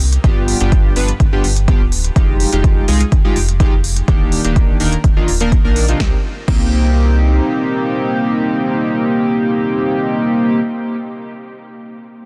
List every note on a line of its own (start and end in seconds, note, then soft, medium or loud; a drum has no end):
0.00 0.18 C2 medium
0.00 open hi-hat loud
0.13 closed hi-hat medium
0.24 0.54 G1 medium
0.24 0.58 G2 medium
0.24 0.58 B3 medium
0.24 0.58 D4 medium
0.24 0.58 F4 medium
0.24 0.58 G4 medium
0.24 kick loud
0.24 closed hi-hat soft
0.48 open hi-hat medium
0.61 0.90 G1 medium
0.61 0.93 G2 medium
0.61 0.93 B3 medium
0.61 0.93 D4 medium
0.61 0.93 F4 medium
0.61 0.93 G4 medium
0.61 closed hi-hat medium
0.72 kick loud
0.72 closed hi-hat soft
0.96 1.12 G1 medium
0.96 1.10 G2 medium
0.96 1.10 B3 medium
0.96 1.10 D4 medium
0.96 1.10 F4 medium
0.96 1.10 B4 loud
0.96 open hi-hat medium
1.08 closed hi-hat medium
1.20 1.36 G1 loud
1.20 kick loud
1.20 closed hi-hat soft
1.33 1.46 G2 medium
1.33 1.46 B3 medium
1.33 1.46 D4 medium
1.33 1.46 F4 medium
1.33 1.46 G4 medium
1.44 1.74 G1 medium
1.44 open hi-hat medium
1.56 closed hi-hat medium
1.68 1.82 G2 medium
1.68 1.82 B3 medium
1.68 1.82 D4 medium
1.68 1.82 F4 medium
1.68 1.82 G4 loud
1.68 kick loud
1.68 closed hi-hat soft
1.81 2.10 D1 medium
1.92 open hi-hat medium
2.04 closed hi-hat medium
2.16 2.46 F1 loud
2.16 2.50 G#3 medium
2.16 2.50 D#4 medium
2.16 2.50 F4 medium
2.16 2.50 G4 medium
2.16 kick loud
2.16 closed hi-hat soft
2.40 open hi-hat medium
2.53 2.82 F1 medium
2.53 2.85 G#3 medium
2.53 2.85 D#4 medium
2.53 2.85 F4 medium
2.53 2.85 G4 medium
2.53 closed hi-hat medium
2.64 kick loud
2.64 closed hi-hat soft
2.88 3.04 C2 medium
2.88 3.02 G#3 medium
2.88 3.02 D#4 medium
2.88 3.02 F4 medium
2.88 3.02 G#4 loud
2.88 open hi-hat medium
3.00 closed hi-hat medium
3.12 3.20 F1 medium
3.12 kick loud
3.12 closed hi-hat soft
3.25 3.37 G#3 medium
3.25 3.37 D#4 medium
3.25 3.37 F4 medium
3.25 3.37 G4 medium
3.36 3.66 F1 loud
3.36 open hi-hat medium
3.49 closed hi-hat medium
3.60 3.74 G#3 medium
3.60 3.74 D#4 medium
3.60 3.74 F4 medium
3.60 3.74 G4 loud
3.60 kick loud
3.60 closed hi-hat soft
3.72 4.02 F1 medium
3.84 open hi-hat medium
3.96 closed hi-hat medium
4.08 4.38 D#1 medium
4.08 4.42 D#3 medium
4.08 4.42 A#3 medium
4.08 4.42 D4 medium
4.08 4.42 D#4 medium
4.08 4.42 G4 medium
4.08 kick loud
4.08 closed hi-hat medium
4.32 open hi-hat medium
4.45 4.74 D#1 medium
4.45 4.77 D#3 medium
4.45 4.77 A#3 medium
4.45 4.77 D4 medium
4.45 4.77 D#4 medium
4.45 4.77 G4 medium
4.45 closed hi-hat medium
4.56 kick loud
4.56 closed hi-hat soft
4.80 4.96 D#1 medium
4.80 4.94 D#3 medium
4.80 4.94 A#3 medium
4.80 4.94 D4 medium
4.80 4.94 D#4 medium
4.80 4.94 A#4 loud
4.80 open hi-hat medium
4.93 closed hi-hat medium
5.04 5.20 D#1 loud
5.04 kick loud
5.04 closed hi-hat soft
5.17 5.29 D#3 medium
5.17 5.29 A#3 medium
5.17 5.30 D4 medium
5.17 5.29 D#4 medium
5.17 5.29 F4 medium
5.28 5.58 D#1 medium
5.28 open hi-hat medium
5.41 5.53 D#3 medium
5.41 5.53 A#3 medium
5.41 5.53 D4 medium
5.41 5.54 D#4 medium
5.41 5.53 A#4 loud
5.41 closed hi-hat medium
5.52 kick loud
5.52 closed hi-hat soft
5.65 5.94 A#1 medium
5.65 5.86 D#3 medium
5.65 5.86 A#3 medium
5.65 5.86 D4 medium
5.65 5.86 D#4 medium
5.65 5.86 A#4 medium
5.76 open hi-hat medium
5.89 5.98 C3 medium
5.89 5.98 A#3 medium
5.89 5.98 D4 medium
5.89 5.98 D#4 medium
5.89 5.98 F4 medium
5.89 closed hi-hat medium
6.00 6.14 C2 medium
6.00 6.14 A#3 medium
6.00 6.14 C4 medium
6.00 6.14 D#4 medium
6.00 6.14 G4 medium
6.00 kick loud
6.00 snare medium
6.48 7.40 C2 medium
6.48 10.60 A#3 medium
6.48 10.60 C4 medium
6.48 10.60 D#4 medium
6.48 10.60 G4 medium
6.48 kick loud
6.48 crash medium